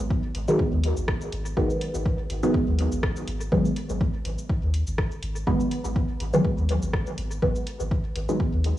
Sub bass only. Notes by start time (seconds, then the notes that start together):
0.35 G#1
0.73 D#2
0.97 G#1
1.32 G#1
1.57 G#1
1.94 G#1
2.30 G#1
2.68 D#2
2.92 G#1
3.28 G#1
3.52 G#1
3.90 G#1
4.25 G#1
4.63 D#2
4.87 G#1
5.23 G#1
5.47 G#1
5.85 G#1
6.20 G#1
6.58 D#2
6.82 G#1
7.18 G#1
7.42 G#1
7.80 G#1
8.15 G#1
8.53 D#2